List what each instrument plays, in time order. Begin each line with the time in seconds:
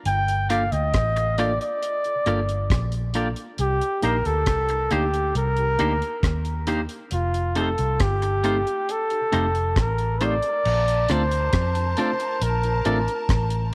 0.05 fingered electric bass G1, flugelhorn G5, closed hi-hat
0.28 closed hi-hat
0.50 clean electric guitar A#3 F4 G4 D5, tine electric piano A#3 D4 F4 A4, flugelhorn F5, closed hi-hat
0.72 fingered electric bass D2, flugelhorn D#5, closed hi-hat
0.94 fingered electric bass A1, kick, cross-stick, closed hi-hat
1.17 tine electric piano F4 A4, muted clean electric guitar stroke, closed hi-hat
1.38 tine electric piano A#3 D4 F4 A4, clean electric guitar A#3 F4 G4 D5, flugelhorn D5, closed hi-hat
1.61 flugelhorn D5, closed hi-hat
1.83 closed hi-hat
2.04 tine electric piano F4 A4, closed hi-hat
2.26 fingered electric bass G1, tine electric piano A#3 D4 F4 A4, clean electric guitar A#3 F4 G4 D5, closed hi-hat
2.49 closed hi-hat
2.70 fingered electric bass A#1, kick, cross-stick, closed hi-hat
2.92 closed hi-hat
3.14 tine electric piano A#3 D4 F4 A4, clean electric guitar A#3 F4 G4 D5, closed hi-hat
3.36 closed hi-hat
3.58 fingered electric bass C2, flugelhorn G4, closed hi-hat
3.81 closed hi-hat
4.02 fingered electric bass A#1, tine electric piano A#3 D4 D#4 G4, clean electric guitar A#3 D#4 G4 C5, flugelhorn A#4, closed hi-hat
4.25 fingered electric bass D2, flugelhorn A4, closed hi-hat
4.46 fingered electric bass C2, kick, cross-stick, closed hi-hat
4.69 tine electric piano D#4 G4, muted clean electric guitar stroke, closed hi-hat
4.91 fingered electric bass D2, tine electric piano A#3 D4 D#4 G4, clean electric guitar A#3 D#4 G4 C5, flugelhorn G4, closed hi-hat
5.14 closed hi-hat
5.35 fingered electric bass C2, flugelhorn A#4, closed hi-hat
5.57 tine electric piano D#4 G4, closed hi-hat
5.78 fingered electric bass D2, tine electric piano A#3 D4 D#4 G4, clean electric guitar A#3 D#4 G4 C5, closed hi-hat
6.02 closed hi-hat
6.23 fingered electric bass D#2, kick, cross-stick, closed hi-hat
6.45 closed hi-hat
6.67 tine electric piano A#3 D4 D#4 G4, clean electric guitar A#3 D#4 G4 C5, closed hi-hat
6.89 closed hi-hat
7.11 fingered electric bass F1, flugelhorn F4, closed hi-hat
7.34 closed hi-hat
7.55 clean electric guitar A3 D#4 F4 C5, tine electric piano A3 C4 D#4 G4, flugelhorn A4, closed hi-hat
7.78 fingered electric bass C2, closed hi-hat
8.00 fingered electric bass G1, flugelhorn G4, kick, cross-stick, closed hi-hat
8.22 tine electric piano D#4 G4, muted clean electric guitar stroke, closed hi-hat
8.44 clean electric guitar A3 D#4 F4 C5, tine electric piano A3 C4 D#4 G4, closed hi-hat
8.67 closed hi-hat
8.89 flugelhorn A4, closed hi-hat
9.10 tine electric piano D#4 G4, closed hi-hat
9.32 fingered electric bass F1, tine electric piano A3 C4 D#4 G4, clean electric guitar A3 D#4 F4 C5, closed hi-hat
9.55 closed hi-hat
9.76 fingered electric bass A1, kick, cross-stick, closed hi-hat
9.81 flugelhorn A#4
9.98 closed hi-hat
10.21 tine electric piano A3 C4 D#4 G4, clean electric guitar A3 D#4 F4 C5, flugelhorn D5, closed hi-hat
10.42 closed hi-hat
10.65 fingered electric bass A#1, string section A#4 A5, crash
10.88 closed hi-hat
11.09 fingered electric bass D2, tine electric piano A3 C4 D4 F4, clean electric guitar D4 F4 A4 D5, flugelhorn C5, cross-stick, closed hi-hat
11.31 closed hi-hat
11.53 fingered electric bass F2, kick, cross-stick, closed hi-hat
11.75 tine electric piano D4 F4, closed hi-hat
11.97 tine electric piano A3 C4 D4 F4, clean electric guitar D4 F4 A4 D5, flugelhorn C5, closed hi-hat
12.20 closed hi-hat
12.41 fingered electric bass A#1, flugelhorn A#4, closed hi-hat
12.63 tine electric piano D4 F4, closed hi-hat
12.85 fingered electric bass A1, tine electric piano A3 C4 D4 F4, clean electric guitar D4 F4 A4 D5, closed hi-hat
13.08 closed hi-hat
13.29 fingered electric bass A1, kick, cross-stick, closed hi-hat
13.50 closed hi-hat